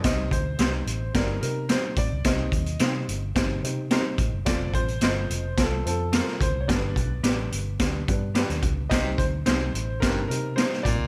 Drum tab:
HH |x-x-x-x-x-x-x-x-|x-xxx-x-x-x-x-x-|x-xxx-x-x-x-x-x-|x-x-x-x-x-x-xxx-|
SD |o---o---o---o---|o---o---o---o---|o---o---o---oo--|o---o---o---oo--|
BD |o-o-----o-----o-|o-o-----o-----o-|o-o-----o-----o-|o-o-----o-o---o-|

HH |x-x-x-x-x-x-x-x-|
SD |o---o---o---oo--|
BD |o-o-----o-----o-|